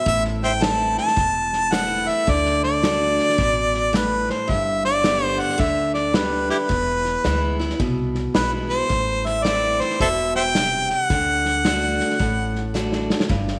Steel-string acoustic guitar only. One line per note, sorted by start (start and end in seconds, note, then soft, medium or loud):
0.06 1.13 A2 medium
0.60 1.14 E3 medium
0.60 1.14 A3 medium
0.60 1.15 C4 medium
0.60 1.15 E4 medium
1.16 2.23 E2 medium
1.71 2.25 E3 medium
1.71 2.25 A3 medium
1.71 2.25 C4 medium
1.71 2.25 E4 medium
2.27 2.81 D3 medium
2.82 3.36 D3 medium
2.82 3.36 A3 medium
2.82 3.36 D4 medium
2.82 3.37 F#4 medium
3.38 3.91 B2 medium
3.93 4.46 A2 medium
4.48 5.54 G2 medium
5.03 5.57 D3 medium
5.03 5.57 G3 medium
5.03 5.57 B3 medium
5.03 5.57 G4 medium
5.58 6.12 D3 medium
6.13 6.67 D3 medium
6.13 6.67 G3 medium
6.13 6.68 B3 medium
6.13 6.68 G4 medium
6.69 7.75 E2 medium
7.24 7.58 E3 medium
7.24 7.58 G#3 medium
7.24 7.58 B3 medium
7.24 7.58 E4 medium
7.59 7.80 B3 soft
7.59 7.79 E4 soft
7.80 8.86 B2 medium
8.34 8.88 E3 medium
8.34 8.88 G#3 medium
8.34 8.88 B3 medium
8.34 8.88 E4 medium
8.89 9.96 A2 medium
9.44 9.98 E3 medium
9.44 9.98 A3 medium
9.44 9.98 C4 medium
9.44 9.98 E4 medium
10.01 10.53 B2 medium
10.55 11.08 C3 medium
11.10 11.63 D3 medium
11.64 12.18 D3 medium
11.64 12.18 A3 medium
11.64 12.18 D4 medium
11.64 12.18 F#4 medium
12.19 13.25 A2 medium
12.74 13.27 D3 medium
12.74 13.27 A3 medium
12.74 13.28 D4 medium
12.74 13.28 F#4 medium
13.29 13.59 G2 medium